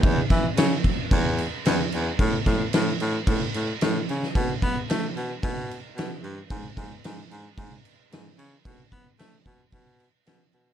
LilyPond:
<<
  \new Staff \with { instrumentName = "Baritone saxophone" } { \clef bass \time 4/4 \key a \lydian \tempo 4 = 111 e,8 e8 cis8 r8 e,4 e,8 e,8 | a,8 a,8 a,8 a,8 a,8 a,8 a,8 cis8 | b,8 b8 a8 b,8 b,4 b,8 g,8 | gis,8 gis,8 gis,8 gis,8 gis,8 r8 gis,8 cis8 |
b,8 b8 a8 b,8 b,4 b,8 b,8 | }
  \new DrumStaff \with { instrumentName = "Drums" } \drummode { \time 4/4 <cymc bd>8 <cymc bd sn>8 <cymc sn>8 <cymc bd>8 <cymc bd>8 cymc8 <cymc sn>8 cymc8 | <cymc bd>8 <cymc bd sn>8 <cymc sn>8 cymc8 <cymc bd>8 cymc8 <cymc sn>8 cymc16 sn16 | <cymc bd>8 <cymc bd>8 <cymc sn>8 cymc8 <cymc bd>8 cymc8 <cymc sn>8 cymc8 | <cymc bd>8 <cymc bd>8 <cymc sn>8 cymc8 <cymc bd>8 cymc8 <cymc sn>8 cymc8 |
<cymc bd>8 <cymc bd>8 <cymc sn>8 <cymc bd>8 <cymc bd>8 cymc8 <cymc sn>8 cymc8 | }
>>